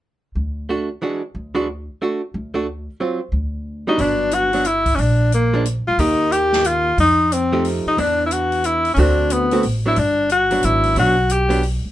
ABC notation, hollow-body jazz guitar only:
X:1
M:3/4
L:1/8
Q:"Swing" 1/4=181
K:G
V:1 name="Hollow-body jazz guitar"
z4 [A,DF] z | [E,^G,DF] z2 [E,G,DF] z2 | [A,DF] z2 [A,DF] z2 | [F,C=F] z4 [G,B,D^F] |
[F,B,D]3 [F,B,D] z2 | z3 [=F,_A,D] z2 | [_E,_B,G]4- [E,B,G] z | z3 [=F,A,_EG]3 |
[E,B,D]4- [E,B,D] z | [D,A,CF]3 [D,A,CF] z [F,B,D] | z3 [F,B,D]3 | [F,B,D] z2 [F,B,D] z2 |]